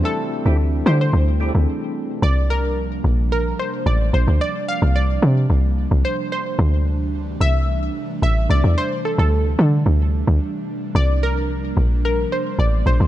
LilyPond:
<<
  \new Staff \with { instrumentName = "Synth pluck" } { \time 4/4 \key c \mixolydian \tempo 4 = 110 a'4. c''16 c''4.~ c''16 r8 | d''8 bes'4. bes'8 c''8 d''8 c''8 | d''8 f''8 d''2 c''8 c''8~ | c''4 r8 e''4. e''8 d''8 |
c''8 a'16 a'4 r2 r16 | d''8 bes'4. bes'8 c''8 d''8 c''8 | }
  \new Staff \with { instrumentName = "Tonewheel organ" } { \time 4/4 \key c \mixolydian r8. <c' e' g'>16 r8 <c' e' g'>16 r8. <c' e' g'>16 r4 r16 | r1 | r1 | r1 |
r1 | r1 | }
  \new Staff \with { instrumentName = "Tine electric piano" } { \time 4/4 \key c \mixolydian <a c' d' e' a'>4. r4 <a c' d' e' aes' a'>4 r8 | r1 | r1 | r1 |
r1 | r1 | }
  \new Staff \with { instrumentName = "Analog synth pad" } { \clef bass \time 4/4 \key c \mixolydian << { <c g d'>1 | <c g d'>1~ | <c g d'>1~ | <c g d'>1~ |
<c g d'>1~ | <c g d'>1 | } \\ { <e c'>1 | <f bes>1~ | <f bes>1 | <e a>1~ |
<e a>1 | <f bes>1 | } >> }
  \new Staff \with { instrumentName = "Log drum bass" } { \clef bass \time 4/4 \key c \mixolydian r8. d,8. d8 d,8. d,16 r4 | c,4. bes,,4 r8 a,,8 bes,,16 d,16 | r8. c,8. c8 c,8. c,16 r4 | d,4. c,4 r8 a,,8 c,16 e,16 |
r8. d,8. d8 d,8. d,16 r4 | c,4. bes,,4 r8 a,,8 bes,,16 d,16 | }
>>